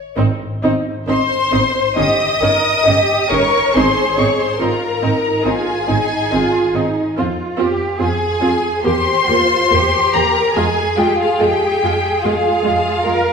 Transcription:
Already playing: violin section C#5
0.17 double bass section G#1, viola section C4 D#4
0.63 double bass section G#1, viola section C4 D#4
1.08 double bass section G#1, viola section C4 D#4, violin section C5 C6
1.52 double bass section G#1, viola section C4 D#4
1.97 double bass section G1, viola section C#4 D#4, cello section G4, violin section D#5 D#6
2.41 double bass section G1, viola section C#4 D#4, cello section A#4
2.85 double bass section G1, viola section C#4 D#4, cello section G4
3.30 double bass section G1, viola section C#4 D#4, cello section A#4, violin section C#5 C#6
3.74 double bass section G#1, viola section C4 D#4, cello section G#4, violin section C5 C6
4.17 double bass section G#1, viola section C4 D#4, violin section C#5 C#6
4.39 violin section C5 C6
4.60 double bass section G#1, viola section C4 D#4, cello section F4, violin section A#4 A#5
5.03 double bass section G#1, viola section C4 D#4, cello section D#4
5.45 double bass section G#1, viola section C4 D#4, cello section F4, violin section G#4 G#5
5.88 double bass section G#1, viola section C4 D#4, cello section D#4
6.32 double bass section G#1, viola section C4 D#4, cello section F4
6.75 double bass section G#1, viola section C4 D#4, cello section D#4
7.17 double bass section F2, viola section C4 F4, cello section F4
7.58 double bass section F2, viola section C4 F4, cello section G4
7.99 double bass section F2, viola section C4 F4, violin section G#4 G#5, cello section G#4
8.41 double bass section F2, viola section C4 F4
8.84 double bass section E2, viola section A#3 G4, cello section G4, violin section C5 C6
9.27 double bass section E2, viola section A#3 G4, cello section F4
9.71 double bass section E2, viola section A#3 G4, cello section G4
10.14 double bass section E2, viola section A#3 G4, violin section A#4 A#5
10.55 double bass section F2, viola section G#3 F4, cello section G#4, violin section G#4 G#5
10.97 double bass section F2, viola section G#3 F4, violin section G4 G5
11.19 violin section F4 F5
11.39 double bass section F2, viola section G#3 F4, violin section G4 G5
11.81 double bass section F2, viola section G#3 F4
12.23 double bass section F2, viola section G#3 F4, violin section F4 F5
12.64 double bass section F2, viola section G#3 F4
13.05 double bass section F2, viola section G#3 F4, cello section A#4

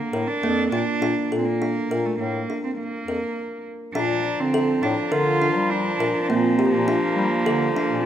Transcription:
Already playing: cello A#3
0.13 bass clarinet A2, kalimba A#4
0.27 cello D4
0.43 bass clarinet F2, kalimba A#3
0.71 bass clarinet A#2, cello D4, kalimba F4
1.01 bass clarinet A#2, kalimba D4
1.31 bass clarinet A#2, kalimba A4
1.38 cello C4
1.46 cello A#3
1.62 kalimba D4
1.90 bass clarinet A#2, kalimba A#4
2.05 cello A3
2.18 bass clarinet A2, cello A#3
2.50 kalimba D4
2.64 cello C4
2.79 cello A#3
3.07 bass clarinet F2, kalimba A#4
3.94 bass clarinet A#2, viola F3, cello D4, kalimba D4, woodwind section D5 A5 A#5
4.38 bass clarinet D3, cello C4
4.54 kalimba A4
4.82 bass clarinet A2, cello D4, kalimba D4
5.12 bass clarinet D3, cello F4, kalimba A#4
5.42 kalimba D4
5.56 bass clarinet G3
5.70 cello D4
5.99 bass clarinet A#2, kalimba A#4
6.22 cello D4
6.28 bass clarinet A#2, kalimba A#3, cello C4
6.59 kalimba G4
6.73 bass clarinet A#2, cello A#3
6.88 kalimba D4
7.16 bass clarinet G3
7.45 bass clarinet D3, kalimba A4
7.76 cello A#3, kalimba D4
7.89 bass clarinet A#2

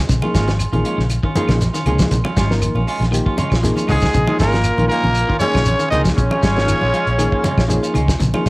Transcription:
0.09 fingered electric bass A#1, clean electric guitar C#3, kick, snare, closed hi-hat, low conga, shekere
0.22 reed electric piano F3 A#3 D#4 G#4, clean electric guitar C#4 F4, high conga, claves
0.34 fingered electric bass G#1, clean electric guitar G#3 C#4 F4, kick, snare, closed hi-hat, shekere
0.48 clean electric guitar F3, snare, closed hi-hat, shekere
0.59 closed hi-hat, high conga, claves, shekere
0.72 fingered electric bass A#1, clean electric guitar D#3 C#4 F4, reed electric piano F3 A#3 D#4 G#4, closed hi-hat, high conga
0.85 clean electric guitar G#3 C#4 F4, closed hi-hat, shekere
0.98 fingered electric bass A#1, clean electric guitar C#3, snare
1.10 closed hi-hat, high conga, claves, shekere
1.23 clean electric guitar D#3 C#4 F4, kick
1.36 reed electric piano F3 A#3 D#4 G#4, clean electric guitar G#3 C#4 F4, closed hi-hat, high conga, shekere
1.48 fingered electric bass A#1, clean electric guitar C#3, kick, snare, closed hi-hat, low conga, claves, shekere
1.61 snare, closed hi-hat, high conga, shekere
1.74 clean electric guitar D#3 C#4 F4, snare, closed hi-hat, shekere
1.86 fingered electric bass C#2, reed electric piano F3 A#3 D#4 G#4, clean electric guitar G#3 C#4 F4, closed hi-hat, high conga, low conga, claves, shekere
1.99 clean electric guitar F3, kick, snare, shekere
2.11 fingered electric bass A#1, kick, closed hi-hat, low conga, shekere
2.24 clean electric guitar C#4 F4, high conga, claves
2.36 fingered electric bass G#1, clean electric guitar G3 G#3 C#4 F4, kick, snare, closed hi-hat, shekere
2.49 reed electric piano F3 A#3 D#4 A#4, snare, shekere
2.62 clean electric guitar D#3, closed hi-hat, high conga, claves, shekere
2.75 fingered electric bass A#1, clean electric guitar C#4 F4, high conga
2.87 clean electric guitar G#3 C#4 F4, open hi-hat, shekere
3.00 fingered electric bass A#1, snare, closed hi-hat, high conga
3.12 clean electric guitar D#3, reed electric piano F3 A#3 D#4 G4, closed hi-hat, high conga, claves, shekere
3.26 clean electric guitar C#4 F4, kick
3.37 clean electric guitar C#3 G#3 C#4 F4, closed hi-hat, high conga, shekere
3.50 fingered electric bass A#1, kick, snare, claves, shekere
3.63 clean electric guitar F3, reed electric piano F3 A#3 D#4 G#4, snare, closed hi-hat, high conga, shekere
3.76 clean electric guitar C#4 F4, closed hi-hat, high conga, shekere
3.87 fingered electric bass C#2, baritone saxophone G#2, clean electric guitar D#3 G#3 C#4 F4, tenor saxophone G#3, trumpet G#4, kick, open hi-hat, high conga, low conga, claves, shekere
4.01 kick, snare, shekere
4.13 fingered electric bass A#1, clean electric guitar C#3, kick, closed hi-hat, low conga, shekere
4.27 reed electric piano F3 A#3 D#4 G#4, clean electric guitar C#4 F4, high conga, claves
4.39 fingered electric bass G#1, baritone saxophone A#2, clean electric guitar G#3 C#4 F4, tenor saxophone A#3, trumpet A#4, kick, snare, closed hi-hat, shekere
4.52 clean electric guitar F3, snare, closed hi-hat, shekere
4.64 closed hi-hat, high conga, claves, shekere
4.77 fingered electric bass A#1, clean electric guitar D#3 C#4 F4, reed electric piano F3 A#3 D#4 A#4, closed hi-hat, high conga
4.88 baritone saxophone A#2, clean electric guitar G#3 C#4 F4, tenor saxophone A#3, trumpet A#4, closed hi-hat, shekere
5.03 fingered electric bass A#1, clean electric guitar C#3, high conga
5.15 closed hi-hat, high conga, claves, shekere
5.29 clean electric guitar D#3 C#4 F4, kick
5.40 baritone saxophone C#3, reed electric piano F3 A#3 D#4 G#4, clean electric guitar G#3 C#4 F4, tenor saxophone C#4, trumpet C#5, closed hi-hat, high conga, shekere
5.54 fingered electric bass A#1, clean electric guitar C#3, kick, snare, closed hi-hat, low conga, claves, shekere
5.65 closed hi-hat, high conga, shekere
5.79 clean electric guitar D#3 C#4 F4, closed hi-hat, shekere
5.90 fingered electric bass C#2, baritone saxophone D#3, reed electric piano F3 A#3 D#4 G#4, clean electric guitar G#3 C#4 F4, tenor saxophone D#4, trumpet D#5, closed hi-hat, high conga, low conga, claves, shekere
6.04 clean electric guitar F3, kick, snare, shekere
6.16 fingered electric bass A#1, baritone saxophone C#3, tenor saxophone C#4, trumpet C#5, kick, closed hi-hat, low conga, shekere
6.31 clean electric guitar C#4 F4, high conga, claves
6.43 fingered electric bass G#1, clean electric guitar G3 G#3 C#4 F4, kick, snare, closed hi-hat, shekere
6.55 reed electric piano F3 A#3 D#4 F4, snare, shekere
6.68 clean electric guitar D#3, closed hi-hat, high conga, claves, shekere
6.81 fingered electric bass A#1, clean electric guitar C#4 F4, high conga
6.93 clean electric guitar F3 G#3 C#4 F4, closed hi-hat, shekere
7.07 fingered electric bass A#1, closed hi-hat
7.18 clean electric guitar D#3, reed electric piano F3 A#3 D#4 G#4, closed hi-hat, high conga, claves, shekere
7.32 clean electric guitar C#4 F4, kick
7.44 clean electric guitar C#3 G#3 C#4 F4, closed hi-hat, high conga, shekere
7.58 fingered electric bass A#1, kick, snare, claves, shekere
7.68 reed electric piano F3 A#3 D#4 G#4, clean electric guitar F3, closed hi-hat, high conga, shekere
7.83 clean electric guitar C#4 F4, closed hi-hat, shekere
7.94 fingered electric bass C#2, clean electric guitar D#3 G#3 C#4, closed hi-hat, high conga, low conga, claves, shekere
8.08 kick, snare, shekere
8.20 fingered electric bass A#1, clean electric guitar C#3, kick, closed hi-hat, low conga, shekere
8.34 reed electric piano F3 A#3 D#4 G#4, clean electric guitar C#4 F4, high conga, claves
8.46 fingered electric bass G#1, clean electric guitar G#3, closed hi-hat

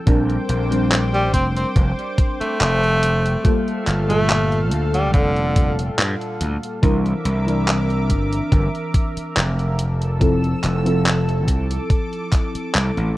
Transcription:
0.06 slap bass A#1, fm electric piano G3 C4 D4 A#4, analog synth pad C5 G5 D6, kick, closed hi-hat
0.30 closed hi-hat
0.49 slap bass A#1, closed hi-hat
0.70 fm electric piano G3 C4 D4 C5, closed hi-hat
0.91 clap, closed hi-hat
1.14 tenor saxophone G3, closed hi-hat
1.34 slap bass F1, tenor saxophone C4, kick, closed hi-hat
1.56 tenor saxophone C4, closed hi-hat
1.76 slap bass F1, kick, closed hi-hat
1.99 closed hi-hat
2.18 kick, closed hi-hat
2.41 tenor saxophone A3, muted slap bass stroke, closed hi-hat
2.60 slap bass F1, clap, closed hi-hat
2.84 closed hi-hat
3.03 closed hi-hat
3.26 closed hi-hat
3.44 fm electric piano G3 A#3 F4 A4, analog synth pad A4 F5, kick, closed hi-hat
3.68 closed hi-hat
3.87 slap bass G1, clap, closed hi-hat
4.08 fm electric piano A#2 G3 F4 A4, tenor saxophone A3, closed hi-hat
4.29 clap, closed hi-hat
4.52 closed hi-hat
4.71 slap bass D2, closed hi-hat
4.94 tenor saxophone G3, closed hi-hat
5.13 slap bass F1, tenor saxophone D3, kick, closed hi-hat
5.36 closed hi-hat
5.56 kick, closed hi-hat
5.79 closed hi-hat
5.98 slap bass G2, clap, closed hi-hat
6.21 closed hi-hat
6.41 slap bass D2, closed hi-hat
6.63 closed hi-hat
6.82 slap bass C2, fm electric piano E3 C4 D4 A#4, analog synth pad A#4 E5 D6, kick, closed hi-hat
7.06 closed hi-hat
7.25 slap bass C2, closed hi-hat
7.46 fm electric piano E3 C4 D4 A#4, closed hi-hat
7.68 clap, closed hi-hat
7.90 closed hi-hat
8.10 slap bass G1, kick, closed hi-hat
8.33 closed hi-hat
8.52 slap bass G1, kick, closed hi-hat
8.75 closed hi-hat
8.94 kick, closed hi-hat
9.17 muted slap bass stroke, closed hi-hat
9.37 slap bass F1, clap, closed hi-hat
9.59 closed hi-hat
9.79 analog synth pad A4 E6, closed hi-hat
10.02 closed hi-hat
10.20 fm electric piano F3 C4 E4 A4, kick, closed hi-hat
10.44 closed hi-hat
10.63 slap bass F1, clap, closed hi-hat
10.84 fm electric piano F3 C4 E4 A4, closed hi-hat
11.06 clap, closed hi-hat
11.29 closed hi-hat
11.47 slap bass C2, analog synth pad D6, kick, closed hi-hat
11.71 closed hi-hat
11.90 kick, closed hi-hat
12.13 closed hi-hat
12.32 kick, clap, closed hi-hat
12.55 muted slap bass stroke, closed hi-hat
12.74 slap bass C2, clap, closed hi-hat
12.97 slap bass A1, closed hi-hat

